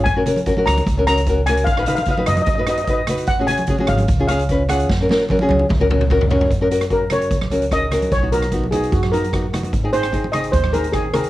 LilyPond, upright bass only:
\new Staff \with { instrumentName = "Upright bass" } { \clef bass \time 4/4 \key fis \major \tempo 4 = 149 fis,8 r4 cis,8 cis,2 | b,,8 r4 fis,8 fis,2 | cis,8 r4 gis,,8 cis,2 | fis,8 r4 cis,8 cis,2 |
fis,2 cis,2 | b,,2 fis,2 | gis,,2 dis,2 | }